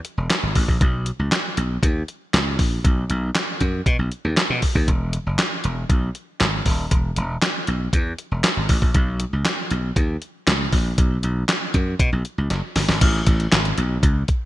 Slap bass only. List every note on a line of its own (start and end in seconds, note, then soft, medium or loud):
0.18 0.27 E1 medium
0.43 0.53 G#1 medium
0.56 0.65 A1 medium
0.68 0.78 A#1 medium
0.81 1.10 B1 loud
1.19 1.29 C#2 medium
1.57 1.77 B1 medium
1.83 2.02 D#2 loud
2.34 2.59 C#2 medium
2.59 2.78 A#1 loud
2.85 3.04 B1 medium
3.10 3.29 B1 loud
3.61 3.80 F#2 medium
3.86 3.96 B2 loud
3.99 4.09 B1 medium
4.25 4.34 D#2 medium
4.50 4.60 B2 medium
4.75 4.89 D#2 medium
4.88 5.17 E1 loud
5.27 5.36 F#1 medium
5.65 5.84 E1 medium
5.90 6.09 B1 loud
6.41 6.60 G#1 medium
6.66 6.85 D#1 medium
6.91 7.11 E1 loud
7.17 7.36 E1 loud
7.68 7.87 B1 medium
7.93 8.12 E2 loud
8.31 8.41 E1 medium
8.57 8.66 G#1 medium
8.69 8.79 A1 medium
8.82 8.92 A#1 medium
8.95 9.24 B1 loud
9.33 9.43 C#2 medium
9.71 9.90 B1 medium
9.96 10.16 D#2 medium
10.47 10.67 C#2 medium
10.73 10.92 A#1 medium
10.98 11.17 B1 loud
11.24 11.43 B1 medium
11.74 11.94 F#2 medium
11.99 12.09 B2 loud
12.13 12.22 B1 medium
12.38 12.48 C#2 medium
12.51 12.60 F#1 medium
12.76 12.86 G1 medium
12.89 12.98 G#1 medium
13.01 13.21 A1 loud
13.27 13.46 A1 loud
13.52 13.72 G#1 medium
13.78 13.97 B1 medium
14.03 14.22 C#2 loud